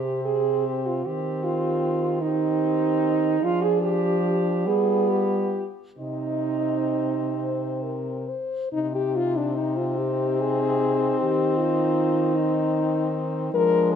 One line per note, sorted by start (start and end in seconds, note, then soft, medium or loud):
0.00 1.02 C3 medium
0.00 1.04 C4 medium
0.00 0.24 G4 medium
0.00 1.04 G4 medium
0.25 0.68 G#4 medium
0.66 0.88 G4 medium
0.86 1.08 F4 medium
1.04 3.38 D#3 medium
1.04 2.20 C4 medium
1.04 2.20 G4 medium
1.04 1.45 G4 medium
1.44 2.23 F4 medium
2.22 3.39 C4 medium
2.22 3.45 D#4 medium
2.22 3.39 G4 medium
3.40 4.68 F3 medium
3.40 4.68 D4 medium
3.40 3.64 F4 medium
3.40 4.01 G#4 medium
3.62 3.81 G#4 medium
3.82 4.69 G4 medium
4.01 4.49 G4 medium
4.66 5.67 G3 medium
4.66 5.67 B3 medium
4.66 5.65 F4 medium
4.66 5.10 G#4 medium
5.09 5.67 G4 medium
5.98 8.34 C3 soft
5.98 8.34 C4 medium
5.98 8.24 D#4 medium
5.98 7.22 D#5 soft
7.36 7.84 C5 medium
7.83 8.30 A#4 medium
8.29 8.72 C5 medium
8.72 11.18 C3 medium
8.72 13.49 C4 medium
8.72 8.93 D#4 medium
8.72 13.50 D#4 medium
8.95 9.18 G4 medium
9.16 9.39 F4 medium
9.37 9.58 D4 medium
9.56 9.79 D#4 medium
9.77 9.99 F4 medium
9.98 10.42 G4 medium
10.41 11.20 G#4 loud
11.20 13.50 D#3 medium
11.20 11.59 G4 medium
11.57 12.37 F4 medium
12.35 13.37 D#4 medium
13.53 13.96 F3 medium
13.53 13.96 G#3 medium
13.53 13.96 D4 medium
13.53 13.94 A#4 loud